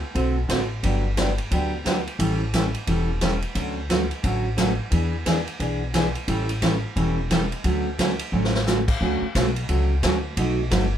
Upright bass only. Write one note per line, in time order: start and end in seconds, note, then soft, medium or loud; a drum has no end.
0.15 0.44 B1 medium
0.49 0.78 A1 medium
0.83 1.38 G1 medium
1.51 2.06 D2 medium
2.19 2.74 A1 medium
2.87 3.42 E1 medium
3.55 4.10 D2 medium
4.24 4.78 A1 medium
4.92 5.46 E2 medium
5.60 6.14 B1 medium
6.28 6.82 A1 medium
6.96 7.51 E1 medium
7.64 8.19 D2 medium
8.32 8.87 A1 medium
9.01 9.20 D2 medium
9.21 muted upright bass stroke soft
9.35 9.68 B1 loud
9.69 10.02 C#2 medium
10.03 10.36 D2 medium
10.37 10.70 B1 medium
10.71 10.98 G1 medium